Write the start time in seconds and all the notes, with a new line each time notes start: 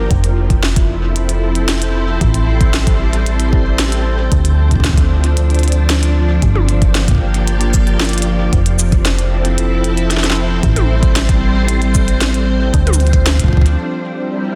Already playing: F3 A#3 D4 G4 A#4
0.11 F1, kick, closed hi-hat
0.16 E4
0.24 closed hi-hat
0.29 C4
0.47 A4 C5, kick, closed hi-hat
0.63 snare
0.76 kick, closed hi-hat
1.16 closed hi-hat
1.29 closed hi-hat
1.55 closed hi-hat
1.69 snare, closed hi-hat
1.82 closed hi-hat
2.21 A1 G3, kick, closed hi-hat
2.34 closed hi-hat
2.61 kick, closed hi-hat
2.74 snare, closed hi-hat
2.87 kick, closed hi-hat
3.13 closed hi-hat
3.26 closed hi-hat
3.40 closed hi-hat
3.53 kick
3.79 snare, closed hi-hat
3.92 closed hi-hat
4.32 D2 F3, kick, closed hi-hat
4.38 D4
4.45 closed hi-hat
4.71 kick, closed hi-hat
4.76 kick
4.80 kick
4.84 kick, snare, closed hi-hat
4.89 kick
4.93 kick
4.97 kick, closed hi-hat
5.24 closed hi-hat
5.37 closed hi-hat
5.50 closed hi-hat
5.55 closed hi-hat
5.59 closed hi-hat
5.63 closed hi-hat
5.68 closed hi-hat
5.72 closed hi-hat
5.90 snare, closed hi-hat
6.03 closed hi-hat
6.42 G1, kick, closed hi-hat
6.52 A#3 G4, high tom
6.69 closed hi-hat
6.82 kick, closed hi-hat
6.95 snare, closed hi-hat
7.00 D5
7.08 kick, closed hi-hat
7.11 kick
7.15 kick
7.18 kick
7.34 closed hi-hat
7.47 closed hi-hat
7.61 closed hi-hat
7.74 kick, cabasa
7.87 closed hi-hat
8.00 snare, closed hi-hat
8.05 closed hi-hat
8.09 closed hi-hat
8.13 closed hi-hat
8.18 closed hi-hat
8.22 closed hi-hat
8.53 F1, kick, closed hi-hat
8.63 C4, closed hi-hat
8.79 cabasa
8.85 E4 A4
8.92 kick, closed hi-hat
9.05 snare, closed hi-hat
9.18 C5, closed hi-hat
9.45 closed hi-hat
9.58 closed hi-hat
9.84 closed hi-hat
9.97 closed hi-hat
10.11 snare, closed hi-hat
10.17 snare
10.24 snare, closed hi-hat
10.30 snare
10.63 A1 G3, kick, closed hi-hat
10.76 closed hi-hat, high tom
11.03 kick, closed hi-hat
11.16 snare, closed hi-hat
11.29 kick, closed hi-hat
11.69 closed hi-hat
11.82 closed hi-hat
11.95 kick, cabasa
12.08 closed hi-hat
12.21 snare, closed hi-hat
12.34 closed hi-hat
12.74 D2 F3, kick, closed hi-hat
12.87 closed hi-hat, high tom
12.94 D4, closed hi-hat, cabasa
13.00 closed hi-hat
13.07 closed hi-hat
13.13 kick, closed hi-hat
13.26 snare, closed hi-hat
13.40 kick, closed hi-hat
13.44 kick
13.48 kick
13.53 kick
13.57 kick
13.61 kick
13.66 closed hi-hat
13.79 G3
14.12 A#4